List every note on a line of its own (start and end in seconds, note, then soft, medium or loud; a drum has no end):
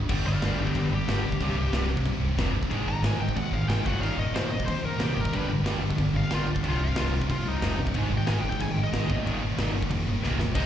0.09 0.21 G1 loud
0.09 0.25 G2 medium
0.09 0.25 D3 medium
0.09 0.26 G3 loud
0.09 kick loud
0.09 crash loud
0.09 crash medium
0.26 0.37 G1 medium
0.26 0.40 G2 medium
0.26 0.41 D3 medium
0.26 0.42 G3 medium
0.26 0.42 D5 medium
0.26 0.42 F5 medium
0.41 0.53 G1 medium
0.41 0.59 G2 medium
0.41 0.58 D3 loud
0.41 0.58 G3 loud
0.41 0.59 D5 medium
0.41 snare loud
0.41 crash medium
0.46 0.60 F5 medium
0.58 0.70 G1 medium
0.58 0.74 G2 medium
0.58 0.74 D3 medium
0.58 0.75 G3 medium
0.63 0.76 B3 medium
0.63 0.77 G4 medium
0.67 kick medium
0.75 0.87 G1 loud
0.75 0.92 G2 medium
0.75 0.91 D3 medium
0.75 0.91 G3 medium
0.75 0.92 B3 medium
0.75 0.92 G4 medium
0.75 kick medium
0.75 crash medium
0.89 1.01 G1 medium
0.89 1.07 D3 medium
0.89 1.08 G3 loud
0.94 1.06 G2 medium
0.94 1.88 G4 loud
1.07 1.19 G1 medium
1.07 1.25 G2 medium
1.07 1.25 D3 medium
1.07 1.25 G3 loud
1.07 snare loud
1.07 crash medium
1.22 1.34 B1 medium
1.22 1.40 G2 medium
1.22 1.40 D3 medium
1.22 1.40 G3 loud
1.32 kick medium
1.41 1.52 C1 medium
1.41 1.57 C2 loud
1.41 1.56 G2 medium
1.41 1.56 C3 loud
1.41 kick medium
1.41 crash medium
1.55 1.67 C1 medium
1.55 1.72 C2 medium
1.55 1.72 G2 medium
1.55 1.73 C3 medium
1.72 1.96 C1 medium
1.72 1.91 C2 loud
1.72 1.90 G2 loud
1.72 1.89 C3 loud
1.72 snare loud
1.72 crash medium
1.90 2.06 C2 medium
1.90 2.07 G2 medium
1.90 2.07 C3 loud
1.97 kick medium
2.05 2.17 A#1 loud
2.05 2.24 C2 medium
2.05 2.24 G2 medium
2.05 2.23 C3 loud
2.05 kick medium
2.05 crash medium
2.20 2.32 C1 medium
2.20 2.36 C2 medium
2.20 2.36 G2 medium
2.24 2.38 C2 medium
2.24 2.39 G2 medium
2.24 2.39 C3 loud
2.36 2.49 F1 medium
2.36 2.56 C2 loud
2.36 2.56 G2 loud
2.36 snare loud
2.36 crash medium
2.40 2.55 C3 loud
2.53 2.65 G1 medium
2.53 2.71 C3 medium
2.57 2.71 C2 medium
2.57 2.71 G2 medium
2.63 kick medium
2.71 2.82 G#1 loud
2.71 2.88 G#2 medium
2.71 2.87 D#3 medium
2.71 2.87 G#3 loud
2.71 kick medium
2.71 crash medium
2.86 2.98 G#1 medium
2.86 3.02 G#2 medium
2.86 3.03 D#3 medium
2.86 3.04 G#3 loud
2.86 3.04 A#5 loud
3.02 3.14 G#1 medium
3.02 3.20 G#2 loud
3.02 3.20 D#3 loud
3.02 3.19 G#3 loud
3.02 3.21 G#5 loud
3.02 snare loud
3.02 crash medium
3.18 3.30 G#1 medium
3.18 3.35 G#2 medium
3.18 3.36 D#3 medium
3.18 3.37 G#3 medium
3.18 3.36 G5 medium
3.29 kick medium
3.36 3.48 G#1 loud
3.36 3.53 G#2 medium
3.36 3.52 D#3 loud
3.36 3.52 G#3 loud
3.36 3.53 F#5 medium
3.36 kick loud
3.36 crash medium
3.52 3.64 G#1 medium
3.52 3.67 G#2 medium
3.52 3.68 D#3 medium
3.52 3.68 G#3 medium
3.52 3.69 F5 medium
3.68 3.81 G#1 loud
3.68 3.85 G#2 medium
3.68 3.85 D#3 loud
3.68 3.85 G#3 loud
3.68 3.85 G5 medium
3.68 snare loud
3.68 crash medium
3.85 3.98 G1 loud
3.85 4.01 D#2 medium
3.85 4.01 A#2 loud
3.85 4.00 D#3 loud
3.85 4.01 F#5 medium
3.85 kick loud
4.01 4.13 G1 medium
4.01 4.17 D#2 medium
4.01 4.17 A#2 loud
4.01 4.18 D#3 loud
4.01 4.18 F5 medium
4.01 crash medium
4.17 4.29 G1 medium
4.17 4.35 D#2 medium
4.17 4.34 A#2 medium
4.17 4.33 D#3 medium
4.17 4.35 D#5 loud
4.32 4.57 G1 medium
4.32 4.50 D#2 loud
4.32 4.51 A#2 loud
4.32 4.51 D#3 loud
4.32 4.51 C5 loud
4.32 snare loud
4.32 crash medium
4.51 4.67 D#2 medium
4.51 4.67 A#2 medium
4.51 4.66 D#3 loud
4.51 4.65 D#5 medium
4.60 kick medium
4.66 4.84 D#2 medium
4.66 4.80 F2 medium
4.66 4.84 A#2 medium
4.66 4.85 D#3 loud
4.66 4.85 C5 medium
4.66 kick medium
4.66 crash medium
4.83 4.95 G1 medium
4.83 5.00 D#2 medium
4.83 4.99 A#2 medium
4.83 4.98 D#3 medium
4.83 5.01 A#4 loud
5.00 5.12 C2 medium
5.00 5.14 D#2 medium
5.00 5.15 A#2 loud
5.00 5.15 D#3 loud
5.00 5.20 G4 medium
5.00 snare loud
5.00 crash medium
5.15 5.28 G1 loud
5.15 5.32 D#2 medium
5.15 5.32 A#2 medium
5.15 5.32 D#3 medium
5.20 5.35 A#4 medium
5.25 kick medium
5.33 5.45 G1 medium
5.33 5.48 G2 medium
5.33 5.48 D3 medium
5.33 5.49 G3 loud
5.33 5.50 B4 medium
5.33 kick medium
5.33 crash medium
5.47 5.59 G1 medium
5.47 5.63 G2 medium
5.47 5.64 D3 medium
5.47 5.66 G3 loud
5.63 5.76 G1 medium
5.63 5.81 G2 medium
5.63 5.81 D3 medium
5.63 5.81 G3 loud
5.63 snare loud
5.63 crash medium
5.81 5.93 G1 medium
5.81 5.96 G2 medium
5.81 5.96 D3 medium
5.81 5.97 G3 medium
5.90 kick medium
5.97 6.11 G1 loud
5.97 6.14 G2 loud
5.97 6.14 D3 loud
5.97 6.13 G3 loud
5.97 kick medium
5.97 crash medium
6.14 6.26 G1 loud
6.14 6.29 G2 medium
6.14 6.31 D3 medium
6.14 6.30 G3 medium
6.14 6.32 F5 loud
6.30 6.42 G1 loud
6.30 6.47 G2 loud
6.30 6.47 D3 loud
6.30 6.46 G3 loud
6.30 6.49 F4 medium
6.30 snare loud
6.30 crash medium
6.46 6.59 B1 loud
6.46 6.63 G2 medium
6.46 6.63 D3 medium
6.46 6.63 G3 medium
6.56 kick medium
6.64 6.75 C1 loud
6.64 6.80 C2 medium
6.64 6.79 G2 loud
6.64 6.78 C3 loud
6.64 kick medium
6.64 crash medium
6.69 6.83 F4 medium
6.79 6.92 C1 medium
6.79 6.94 C2 medium
6.79 6.95 G2 medium
6.79 6.95 C3 loud
6.84 6.98 F5 loud
6.96 7.19 C1 medium
6.96 7.12 C2 medium
6.96 7.11 G2 loud
6.96 7.11 C3 loud
6.96 7.13 F4 loud
6.96 snare loud
6.96 crash medium
7.12 7.27 C2 medium
7.12 7.28 G2 medium
7.12 7.29 C3 medium
7.22 kick medium
7.29 7.41 A#1 loud
7.29 7.46 C2 loud
7.29 7.45 G2 loud
7.29 7.44 C3 loud
7.29 7.48 F4 medium
7.29 kick medium
7.29 crash medium
7.46 7.57 C1 medium
7.46 7.61 C2 medium
7.46 7.61 G2 medium
7.46 7.62 C3 loud
7.46 7.79 D#4 loud
7.62 7.74 F1 medium
7.62 7.80 C2 loud
7.62 7.79 G2 loud
7.62 7.79 C3 loud
7.62 snare loud
7.62 crash medium
7.79 7.90 A#1 medium
7.79 7.95 C2 medium
7.79 7.95 G2 medium
7.79 7.95 C3 medium
7.87 kick medium
7.94 8.06 G#1 medium
7.94 8.12 G#2 loud
7.94 8.13 D#3 loud
7.94 8.12 G#3 loud
7.94 kick loud
7.94 crash medium
8.10 8.22 G#1 medium
8.10 8.28 G#2 medium
8.10 8.29 D#3 medium
8.10 8.29 G#3 medium
8.18 8.27 G5 medium
8.26 8.38 G#1 medium
8.26 8.44 G#2 loud
8.26 8.44 D#3 medium
8.26 8.40 G#5 loud
8.26 snare loud
8.26 crash medium
8.30 8.43 G#3 loud
8.40 8.55 G#1 medium
8.40 8.61 G#3 medium
8.40 8.49 G5 medium
8.45 8.60 G#2 medium
8.45 8.61 D#3 medium
8.50 8.60 G5 medium
8.50 kick medium
8.60 8.72 G#1 loud
8.60 8.77 G#2 medium
8.60 8.77 D#3 loud
8.60 8.76 G#3 loud
8.60 8.72 G#5 medium
8.60 kick medium
8.60 crash medium
8.72 8.88 G#1 medium
8.72 8.82 G5 loud
8.77 8.92 G#2 medium
8.77 8.93 D#3 medium
8.77 8.93 G#3 loud
8.84 9.15 D#5 loud
8.92 9.04 G#1 medium
8.92 9.08 G#2 loud
8.92 9.09 D#3 loud
8.92 9.09 G#3 loud
8.92 snare loud
8.92 crash medium
9.09 9.21 G1 loud
9.09 9.26 D#2 medium
9.09 9.25 A#2 loud
9.09 9.24 D#3 loud
9.09 kick loud
9.26 9.37 G1 loud
9.26 9.41 D#2 medium
9.26 9.41 A#2 loud
9.26 9.41 D#3 loud
9.26 crash medium
9.30 9.43 D#3 loud
9.42 9.54 G1 medium
9.42 9.59 D#2 medium
9.42 9.58 A#2 loud
9.42 9.58 D#3 loud
9.58 9.81 G1 medium
9.58 9.74 D#2 medium
9.58 9.75 A#2 loud
9.58 9.75 D#3 loud
9.58 snare loud
9.58 crash medium
9.76 9.92 D#2 medium
9.76 9.91 A#2 loud
9.76 9.90 D#3 medium
9.82 kick medium
9.91 10.06 D#2 medium
9.91 10.02 F2 loud
9.91 10.06 A#2 loud
9.91 10.07 D#3 loud
9.91 kick medium
9.91 crash medium
10.06 10.18 G1 loud
10.06 10.23 D#2 medium
10.06 10.23 A#2 loud
10.06 10.22 D#3 loud
10.22 10.34 C2 loud
10.22 10.39 D#2 medium
10.22 10.40 A#2 medium
10.22 10.40 D#3 loud
10.22 snare medium
10.38 10.50 G1 loud
10.38 10.54 D#2 medium
10.38 10.55 A#2 loud
10.38 10.56 D#3 medium
10.38 snare loud
10.55 10.66 C1 loud
10.55 10.66 C2 loud
10.55 10.66 G2 loud
10.55 10.66 C3 loud
10.55 10.66 G3 loud
10.55 10.66 D#4 medium
10.55 10.66 D#4 loud
10.55 10.66 D#5 loud
10.55 kick loud
10.55 crash loud
10.55 crash medium